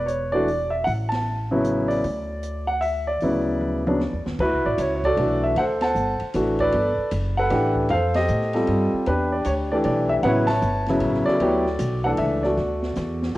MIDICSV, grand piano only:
0, 0, Header, 1, 2, 480
1, 0, Start_track
1, 0, Key_signature, 2, "major"
1, 0, Tempo, 389864
1, 1069, Time_signature, 3, 2, 24, 8
1, 16467, End_track
2, 0, Start_track
2, 0, Title_t, "Grand piano"
2, 0, Program_c, 0, 0
2, 74, Note_on_c, 0, 73, 72
2, 380, Note_off_c, 0, 73, 0
2, 394, Note_on_c, 0, 74, 96
2, 409, Note_on_c, 0, 52, 62
2, 420, Note_on_c, 0, 57, 56
2, 423, Note_on_c, 0, 62, 59
2, 424, Note_on_c, 0, 66, 71
2, 566, Note_off_c, 0, 52, 0
2, 572, Note_off_c, 0, 57, 0
2, 573, Note_off_c, 0, 62, 0
2, 573, Note_off_c, 0, 66, 0
2, 865, Note_on_c, 0, 76, 73
2, 902, Note_off_c, 0, 74, 0
2, 1036, Note_on_c, 0, 78, 90
2, 1057, Note_off_c, 0, 76, 0
2, 1110, Note_off_c, 0, 78, 0
2, 1338, Note_on_c, 0, 81, 82
2, 1860, Note_on_c, 0, 49, 64
2, 1866, Note_on_c, 0, 54, 54
2, 1871, Note_on_c, 0, 59, 56
2, 1872, Note_on_c, 0, 64, 70
2, 1963, Note_off_c, 0, 81, 0
2, 2316, Note_on_c, 0, 74, 80
2, 2478, Note_off_c, 0, 49, 0
2, 2480, Note_off_c, 0, 54, 0
2, 2483, Note_off_c, 0, 59, 0
2, 2483, Note_off_c, 0, 64, 0
2, 3291, Note_on_c, 0, 78, 87
2, 3321, Note_off_c, 0, 74, 0
2, 3457, Note_on_c, 0, 76, 84
2, 3472, Note_off_c, 0, 78, 0
2, 3782, Note_on_c, 0, 74, 78
2, 3788, Note_off_c, 0, 76, 0
2, 3975, Note_on_c, 0, 54, 49
2, 3978, Note_on_c, 0, 49, 57
2, 3986, Note_on_c, 0, 64, 67
2, 3987, Note_on_c, 0, 59, 55
2, 4697, Note_off_c, 0, 54, 0
2, 4698, Note_off_c, 0, 49, 0
2, 4702, Note_off_c, 0, 64, 0
2, 4703, Note_off_c, 0, 59, 0
2, 4764, Note_on_c, 0, 49, 57
2, 4766, Note_on_c, 0, 54, 57
2, 4776, Note_on_c, 0, 59, 55
2, 4779, Note_on_c, 0, 62, 63
2, 4909, Note_off_c, 0, 49, 0
2, 4910, Note_off_c, 0, 54, 0
2, 4915, Note_off_c, 0, 59, 0
2, 4916, Note_off_c, 0, 62, 0
2, 5180, Note_off_c, 0, 74, 0
2, 5421, Note_on_c, 0, 71, 87
2, 5428, Note_on_c, 0, 66, 65
2, 5436, Note_on_c, 0, 64, 67
2, 5732, Note_off_c, 0, 71, 0
2, 5733, Note_on_c, 0, 74, 80
2, 5897, Note_off_c, 0, 74, 0
2, 5907, Note_on_c, 0, 73, 77
2, 6072, Note_off_c, 0, 73, 0
2, 6090, Note_on_c, 0, 73, 64
2, 6158, Note_off_c, 0, 66, 0
2, 6163, Note_off_c, 0, 64, 0
2, 6198, Note_off_c, 0, 73, 0
2, 6213, Note_on_c, 0, 74, 99
2, 6226, Note_on_c, 0, 69, 65
2, 6227, Note_on_c, 0, 66, 61
2, 6367, Note_off_c, 0, 66, 0
2, 6372, Note_on_c, 0, 52, 53
2, 6377, Note_on_c, 0, 57, 53
2, 6379, Note_on_c, 0, 62, 51
2, 6385, Note_on_c, 0, 66, 57
2, 6692, Note_on_c, 0, 76, 77
2, 6699, Note_off_c, 0, 74, 0
2, 6816, Note_off_c, 0, 69, 0
2, 6849, Note_off_c, 0, 52, 0
2, 6851, Note_off_c, 0, 57, 0
2, 6852, Note_off_c, 0, 62, 0
2, 6855, Note_off_c, 0, 66, 0
2, 6857, Note_off_c, 0, 76, 0
2, 6865, Note_on_c, 0, 78, 94
2, 6879, Note_on_c, 0, 72, 68
2, 6880, Note_on_c, 0, 69, 68
2, 6933, Note_off_c, 0, 78, 0
2, 7162, Note_off_c, 0, 72, 0
2, 7166, Note_on_c, 0, 81, 90
2, 7181, Note_on_c, 0, 72, 60
2, 7186, Note_on_c, 0, 78, 71
2, 7606, Note_off_c, 0, 69, 0
2, 7766, Note_off_c, 0, 81, 0
2, 7774, Note_off_c, 0, 72, 0
2, 7776, Note_off_c, 0, 78, 0
2, 7819, Note_on_c, 0, 52, 60
2, 7819, Note_on_c, 0, 57, 55
2, 7823, Note_on_c, 0, 62, 48
2, 7829, Note_on_c, 0, 66, 63
2, 8129, Note_on_c, 0, 74, 94
2, 8152, Note_on_c, 0, 71, 64
2, 8153, Note_on_c, 0, 69, 63
2, 8293, Note_off_c, 0, 52, 0
2, 8293, Note_off_c, 0, 57, 0
2, 8295, Note_off_c, 0, 62, 0
2, 8298, Note_off_c, 0, 66, 0
2, 8728, Note_off_c, 0, 74, 0
2, 8740, Note_off_c, 0, 71, 0
2, 8741, Note_off_c, 0, 69, 0
2, 9080, Note_on_c, 0, 78, 93
2, 9102, Note_on_c, 0, 69, 70
2, 9103, Note_on_c, 0, 71, 70
2, 9235, Note_on_c, 0, 52, 64
2, 9236, Note_on_c, 0, 57, 52
2, 9246, Note_on_c, 0, 62, 53
2, 9248, Note_on_c, 0, 67, 69
2, 9526, Note_off_c, 0, 78, 0
2, 9695, Note_off_c, 0, 69, 0
2, 9696, Note_off_c, 0, 71, 0
2, 9722, Note_off_c, 0, 52, 0
2, 9722, Note_off_c, 0, 57, 0
2, 9727, Note_off_c, 0, 62, 0
2, 9728, Note_off_c, 0, 67, 0
2, 9733, Note_on_c, 0, 77, 93
2, 9754, Note_on_c, 0, 72, 69
2, 9759, Note_on_c, 0, 69, 62
2, 10041, Note_on_c, 0, 75, 90
2, 10047, Note_off_c, 0, 69, 0
2, 10052, Note_off_c, 0, 77, 0
2, 10062, Note_on_c, 0, 67, 61
2, 10066, Note_on_c, 0, 69, 56
2, 10483, Note_off_c, 0, 72, 0
2, 10512, Note_off_c, 0, 69, 0
2, 10517, Note_on_c, 0, 60, 58
2, 10519, Note_on_c, 0, 55, 62
2, 10527, Note_on_c, 0, 65, 50
2, 10531, Note_on_c, 0, 69, 64
2, 10951, Note_off_c, 0, 75, 0
2, 10961, Note_off_c, 0, 67, 0
2, 11133, Note_off_c, 0, 60, 0
2, 11134, Note_off_c, 0, 55, 0
2, 11138, Note_off_c, 0, 65, 0
2, 11140, Note_off_c, 0, 69, 0
2, 11169, Note_on_c, 0, 71, 81
2, 11191, Note_on_c, 0, 62, 59
2, 11191, Note_on_c, 0, 67, 59
2, 11479, Note_on_c, 0, 74, 72
2, 11489, Note_off_c, 0, 71, 0
2, 11642, Note_on_c, 0, 73, 83
2, 11652, Note_off_c, 0, 74, 0
2, 11712, Note_off_c, 0, 73, 0
2, 11920, Note_off_c, 0, 62, 0
2, 11921, Note_off_c, 0, 67, 0
2, 11962, Note_on_c, 0, 74, 79
2, 11974, Note_on_c, 0, 52, 70
2, 11974, Note_on_c, 0, 57, 51
2, 11981, Note_on_c, 0, 62, 61
2, 11984, Note_on_c, 0, 67, 64
2, 12023, Note_off_c, 0, 74, 0
2, 12122, Note_on_c, 0, 74, 77
2, 12413, Note_off_c, 0, 74, 0
2, 12428, Note_on_c, 0, 76, 85
2, 12490, Note_off_c, 0, 76, 0
2, 12580, Note_off_c, 0, 52, 0
2, 12580, Note_off_c, 0, 57, 0
2, 12583, Note_off_c, 0, 62, 0
2, 12584, Note_off_c, 0, 67, 0
2, 12598, Note_on_c, 0, 78, 94
2, 12606, Note_on_c, 0, 49, 67
2, 12607, Note_on_c, 0, 54, 57
2, 12610, Note_on_c, 0, 59, 63
2, 12618, Note_on_c, 0, 64, 75
2, 12621, Note_on_c, 0, 71, 73
2, 12625, Note_on_c, 0, 73, 73
2, 12669, Note_off_c, 0, 78, 0
2, 12885, Note_off_c, 0, 49, 0
2, 12886, Note_off_c, 0, 54, 0
2, 12887, Note_off_c, 0, 59, 0
2, 12891, Note_off_c, 0, 64, 0
2, 12891, Note_on_c, 0, 81, 101
2, 12903, Note_off_c, 0, 73, 0
2, 12921, Note_on_c, 0, 73, 66
2, 12921, Note_on_c, 0, 76, 59
2, 13353, Note_off_c, 0, 71, 0
2, 13408, Note_on_c, 0, 49, 73
2, 13412, Note_on_c, 0, 54, 61
2, 13413, Note_on_c, 0, 59, 57
2, 13418, Note_on_c, 0, 64, 67
2, 13504, Note_off_c, 0, 81, 0
2, 13520, Note_off_c, 0, 73, 0
2, 13520, Note_off_c, 0, 76, 0
2, 13858, Note_on_c, 0, 74, 96
2, 13887, Note_on_c, 0, 66, 54
2, 13887, Note_on_c, 0, 69, 56
2, 14014, Note_off_c, 0, 49, 0
2, 14016, Note_off_c, 0, 54, 0
2, 14017, Note_off_c, 0, 59, 0
2, 14019, Note_off_c, 0, 64, 0
2, 14050, Note_on_c, 0, 54, 64
2, 14058, Note_on_c, 0, 59, 58
2, 14062, Note_on_c, 0, 64, 55
2, 14062, Note_on_c, 0, 67, 72
2, 14325, Note_off_c, 0, 54, 0
2, 14329, Note_off_c, 0, 59, 0
2, 14331, Note_off_c, 0, 64, 0
2, 14331, Note_off_c, 0, 67, 0
2, 14772, Note_off_c, 0, 74, 0
2, 14787, Note_off_c, 0, 66, 0
2, 14787, Note_off_c, 0, 69, 0
2, 14826, Note_on_c, 0, 78, 85
2, 14835, Note_on_c, 0, 52, 58
2, 14842, Note_on_c, 0, 57, 61
2, 14849, Note_on_c, 0, 62, 58
2, 14851, Note_on_c, 0, 69, 75
2, 14887, Note_off_c, 0, 78, 0
2, 14999, Note_on_c, 0, 76, 82
2, 15286, Note_off_c, 0, 76, 0
2, 15303, Note_on_c, 0, 74, 67
2, 15310, Note_off_c, 0, 69, 0
2, 15329, Note_on_c, 0, 69, 51
2, 15334, Note_on_c, 0, 66, 55
2, 15444, Note_off_c, 0, 52, 0
2, 15448, Note_off_c, 0, 57, 0
2, 15451, Note_off_c, 0, 62, 0
2, 16429, Note_off_c, 0, 66, 0
2, 16431, Note_off_c, 0, 69, 0
2, 16467, Note_off_c, 0, 74, 0
2, 16467, End_track
0, 0, End_of_file